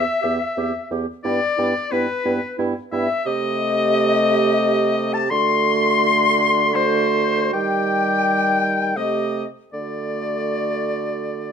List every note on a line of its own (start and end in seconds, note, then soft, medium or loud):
0.00 0.99 E5 loud
0.22 0.39 E2 medium
0.22 0.40 B3 medium
0.22 0.37 G4 medium
0.57 0.72 E2 medium
0.57 0.72 B3 medium
0.57 0.73 G4 medium
0.91 1.06 E2 medium
0.91 1.07 B3 medium
0.91 1.06 G4 medium
1.24 1.40 G2 medium
1.24 1.40 B3 medium
1.24 1.40 E4 medium
1.24 1.93 D5 loud
1.24 1.94 D5 loud
1.57 1.74 G2 medium
1.57 1.74 B3 medium
1.57 1.73 E4 medium
1.91 2.07 G2 medium
1.91 2.07 B3 medium
1.91 2.07 E4 medium
1.91 2.59 B4 medium
2.25 2.40 G2 medium
2.25 2.40 B3 medium
2.25 2.40 E4 medium
2.58 2.74 G2 medium
2.58 2.74 B3 medium
2.58 2.74 E4 medium
2.92 3.08 G2 medium
2.92 3.08 B3 medium
2.92 3.08 E4 medium
2.92 3.27 E5 loud
2.92 3.27 E5 medium
3.26 5.26 C3 medium
3.26 5.27 A3 medium
3.26 5.26 G4 medium
3.26 5.15 D#5 loud
3.26 5.13 D#5 loud
5.13 5.31 A5 loud
5.13 5.32 A5 loud
5.30 7.50 D3 loud
5.30 6.72 A3 medium
5.30 6.71 F#4 medium
5.30 6.77 C6 loud
6.74 7.52 A3 medium
6.74 7.55 F#4 medium
6.74 7.52 C5 loud
6.74 7.54 C5 medium
7.53 8.98 D#3 medium
7.53 8.94 G3 medium
7.53 8.80 G4 medium
7.53 8.98 G5 loud
8.96 9.46 C3 medium
8.96 9.45 A3 medium
8.96 9.46 G4 medium
8.96 9.46 D#5 loud
8.96 9.46 D#5 medium
9.73 11.52 D3 medium
9.73 11.52 A3 medium
9.73 11.52 F#4 medium
9.73 11.52 D5 medium